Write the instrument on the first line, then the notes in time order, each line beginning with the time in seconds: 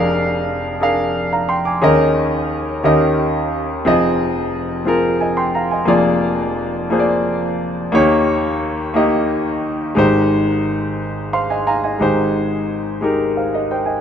grand piano
Already playing: F1 F2 D4 G#4 A#4 F5
0.80 D4 G#4 A#4 F5
1.33 F5 A#5
1.49 G5 C6
1.65 G#5 D6
1.81 D#2 D#3 C#4 G#4 A#4 D#5
2.83 D#2 D#3 C#4 G4 A#4 D#5
3.85 F1 F2 C4 F4 G#4 D#5
4.85 C4 F4 G#4 A#4
5.21 D#5 G#5
5.37 G5 C6
5.55 F5 A#5
5.71 D#5 G#5
5.85 F1 F2 A#3 F4 G#4 D5
6.90 A#3 F4 G#4 C5
6.99 D5
7.92 D#2 D#3 A#3 D#4 G4 C#5
8.94 A#3 D#4 G4 D#5
9.95 G#1 G#2 G#3 D#4 G4 C5
11.33 C5 F5 C6
11.50 D#5 G#5
11.67 F5 G#5 A#5
11.84 D#5 G#5
11.99 G#1 G#2 G#3 D#4 G4 C5
13.01 G#3 D#4 G4 A#4
13.37 C5 F5
13.54 A#4 D#5
13.71 C5 G5
13.86 D#5 G#5